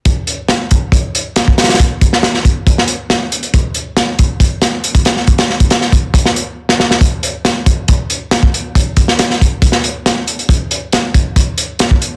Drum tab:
HH |x---x---x---x---x---x---x---xxxx|x---x---x---x---x---x---x---x-x-|x---x---x---x---x---x---x-x-x---|x-x---x-x---x---x---x-----------|
SD |--------o---------------o---oooo|------o-o-o-------o-----o-------|--------o-----------o-------o-o-|--o-o---o-o-------o-------o-o-o-|
BD |o-----------o---o---------o-----|o---o-------o---o---------------|o-----------o---o---------o-----|o-----o-----o---o---------------|

HH |x---x---x---x---x---x---x---x---|x---x---x---x---x---x---x---x-x-|x---x---x---x---x---x---x---x---|
SD |--------o---------------o-------|------o-o-o-------o-----o-------|--------o---------------o-------|
BD |o-----------o---o---------o-----|o---o-------o---o---------------|o-----------o---o---------o-----|